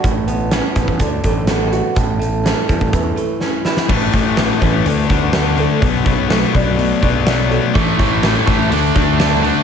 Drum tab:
CC |----------------|----------------|x---------------|----------------|
HH |x-x-x-x-x-x-x-x-|x-x-x-x-x-x-----|--o-o-o-o-o-o-o-|o-o-o-o-o-o-o-o-|
SD |----o-o-----o---|----o-------o-oo|----o-------o---|----o-------o---|
BD |o-----ooo-o-----|o-----ooo-------|o-o---o---o-----|o-o---o---o-----|

CC |----------------|
HH |o-o-o-o-o-o-o-o-|
SD |----o-------o---|
BD |o-o---o---o-----|